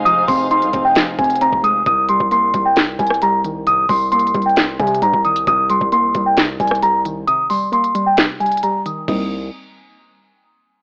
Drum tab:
CC |------------------------------------------------------------------------------------------------|------------------------------------------------------------------------------------------------|------------------------------------------------------------------------------------------------|------------------------------------------------------------------------------------------------|
HH |x-----------o-----------x-----x-----x-----------x-----------x--x--x--x--x-----------x-----------|x-----------x-----------x-----------x-----------x-----------x---x---x---x-----------x-----------|x-----------o-----------x---x---x---x---x---x---x-----------x---x---x---x-----------x-----x-----|x-----------x-----------x-----------x-----------x-----------x---x---x---x-----------x-----------|
CP |------------------------------------------------x-----------------------------------------------|------------------------------------------------x-----------------------------------------------|------------------------------------------------x-----------------------------------------------|------------------------------------------------x-----------------------------------------------|
SD |------------------------------------------------o-----------------------------------------------|------------------------------------------------o-----------------r-----------------------------|------------------------------------------------o-----------------------------------------------|------------------------------------------------o-----------------r-----------------------------|
BD |------------o-----------------------o-----------------------o-----------------o-----------------|o-----------------o-----------------o-----------------------o-----------------------------------|------------o-----------------------o-----------------------o-----------------o-----------------|o-----------------o-----------------o-----------------------o-----------------------------------|

CC |------------------------------------------------------------------------------------------------|x-----------------------------------------------------------------------------------------------|
HH |x-----------o-----------x-----x-----x-----------x-----------x--x--x--x--x-----------x-----------|------------------------------------------------------------------------------------------------|
CP |------------------------------------------------x-----------------------------------------------|------------------------------------------------------------------------------------------------|
SD |------------------------------------------------o-----------------------------------------------|------------------------------------------------------------------------------------------------|
BD |------------------------------------------------------------------------------------------------|o-----------------------------------------------------------------------------------------------|